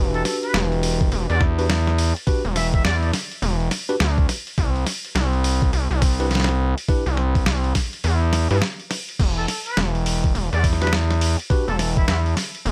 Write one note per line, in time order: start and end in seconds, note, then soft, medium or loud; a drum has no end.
0.00 0.23 E1 loud
0.00 1.54 D4 medium
0.00 1.54 F#4 medium
0.00 1.54 G4 medium
0.00 1.54 B4 medium
0.14 0.21 A4 medium
0.14 open hi-hat soft
0.25 0.37 A4 medium
0.25 snare soft
0.25 open hi-hat medium
0.43 0.56 B4 loud
0.43 open hi-hat soft
0.54 1.10 E1 medium
0.54 snare loud
0.54 open hi-hat soft
0.72 open hi-hat soft
0.83 open hi-hat medium
1.01 kick loud
1.01 open hi-hat soft
1.12 1.27 E1 loud
1.12 open hi-hat soft
1.30 2.13 E2 loud
1.30 1.42 D5 loud
1.30 open hi-hat soft
1.41 kick loud
1.41 snare medium
1.58 1.64 D4 medium
1.58 1.64 F#4 medium
1.58 1.64 G4 medium
1.58 1.64 B4 medium
1.58 open hi-hat soft
1.70 snare loud
1.70 open hi-hat soft
1.87 snare soft
1.98 open hi-hat medium
2.16 open hi-hat soft
2.27 2.42 D4 medium
2.27 2.42 F#4 medium
2.27 2.42 G4 medium
2.27 2.42 B4 medium
2.27 kick loud
2.27 open hi-hat soft
2.45 2.83 E1 medium
2.45 open hi-hat soft
2.56 2.67 E5 medium
2.56 snare soft
2.56 open hi-hat medium
2.74 2.81 E5 medium
2.74 kick loud
2.74 open hi-hat soft
2.84 3.12 E2 medium
2.84 2.96 D5 medium
2.84 snare loud
2.84 open hi-hat soft
3.03 3.10 D5 medium
3.03 open hi-hat soft
3.13 snare medium
3.13 open hi-hat medium
3.31 open hi-hat soft
3.42 3.69 E1 loud
3.42 open hi-hat soft
3.60 open hi-hat soft
3.71 snare medium
3.71 open hi-hat medium
3.89 3.95 D4 medium
3.89 3.95 F#4 medium
3.89 3.95 G4 medium
3.89 3.95 B4 medium
3.89 open hi-hat soft
4.00 4.27 D2 loud
4.00 snare loud
4.00 open hi-hat soft
4.18 kick loud
4.18 open hi-hat soft
4.29 snare medium
4.29 open hi-hat medium
4.47 open hi-hat soft
4.58 4.85 C2 loud
4.58 kick loud
4.58 open hi-hat soft
4.76 open hi-hat soft
4.87 snare soft
4.87 open hi-hat medium
5.05 open hi-hat soft
5.15 5.71 C2 medium
5.15 snare loud
5.15 open hi-hat soft
5.33 open hi-hat soft
5.44 open hi-hat medium
5.62 kick loud
5.62 open hi-hat soft
5.73 5.88 C2 loud
5.73 open hi-hat soft
5.91 6.75 C2 loud
5.91 open hi-hat soft
6.02 kick loud
6.02 snare medium
6.02 open hi-hat medium
6.20 6.26 D4 medium
6.20 6.26 E4 medium
6.20 6.26 G4 medium
6.20 6.26 B4 medium
6.20 open hi-hat soft
6.31 snare medium
6.31 open hi-hat soft
6.35 snare medium
6.40 snare medium
6.44 snare medium
6.49 snare soft
6.49 open hi-hat soft
6.78 open hi-hat soft
6.88 7.04 D4 medium
6.88 7.04 E4 medium
6.88 7.04 G4 medium
6.88 7.04 B4 medium
6.88 kick loud
6.88 open hi-hat soft
7.06 7.44 C2 medium
7.06 open hi-hat soft
7.17 snare soft
7.35 kick loud
7.35 open hi-hat soft
7.46 7.73 C2 medium
7.46 snare loud
7.46 open hi-hat soft
7.64 open hi-hat soft
7.75 kick medium
7.75 snare medium
7.75 open hi-hat medium
7.93 open hi-hat soft
8.04 8.48 E2 loud
8.04 open hi-hat soft
8.33 snare medium
8.33 open hi-hat medium
8.51 8.62 G2 medium
8.51 8.57 D4 medium
8.51 8.57 E4 medium
8.51 8.57 G4 medium
8.51 8.57 B4 medium
8.51 open hi-hat soft
8.62 snare loud
8.62 open hi-hat soft
8.80 open hi-hat soft
8.91 snare medium
8.91 open hi-hat medium
9.09 open hi-hat soft
9.19 9.47 E1 loud
9.19 kick loud
9.19 open hi-hat soft
9.19 crash medium
9.37 9.44 A4 medium
9.37 open hi-hat soft
9.48 9.60 A4 medium
9.48 snare soft
9.48 open hi-hat medium
9.66 9.79 B4 medium
9.66 open hi-hat soft
9.77 10.33 E1 medium
9.77 snare loud
9.77 open hi-hat soft
9.95 open hi-hat soft
10.06 open hi-hat medium
10.24 kick loud
10.24 open hi-hat soft
10.35 10.50 E1 loud
10.35 open hi-hat soft
10.53 11.36 E2 loud
10.53 10.65 D5 medium
10.53 open hi-hat soft
10.64 kick loud
10.64 snare soft
10.64 open hi-hat medium
10.73 snare soft
10.81 10.87 D4 medium
10.81 10.87 F#4 medium
10.81 10.87 G4 medium
10.81 10.94 B4 medium
10.81 10.87 B4 medium
10.81 snare soft
10.81 open hi-hat soft
10.87 snare soft
10.93 snare loud
10.93 open hi-hat soft
11.11 snare soft
11.11 open hi-hat soft
11.21 open hi-hat medium
11.39 open hi-hat soft
11.50 11.65 D4 medium
11.50 11.65 F#4 medium
11.50 11.65 G4 medium
11.50 11.65 B4 medium
11.50 kick loud
11.50 open hi-hat soft
11.68 12.06 E1 medium
11.68 11.75 A4 medium
11.68 open hi-hat soft
11.79 11.90 A4 medium
11.79 snare soft
11.79 open hi-hat medium
11.97 12.04 E4 medium
11.97 kick loud
11.97 open hi-hat soft
12.08 12.35 E2 medium
12.08 12.19 E4 medium
12.08 snare loud
12.08 open hi-hat soft
12.26 open hi-hat soft
12.37 snare medium
12.37 open hi-hat medium
12.55 open hi-hat soft
12.66 12.72 E1 loud
12.66 open hi-hat soft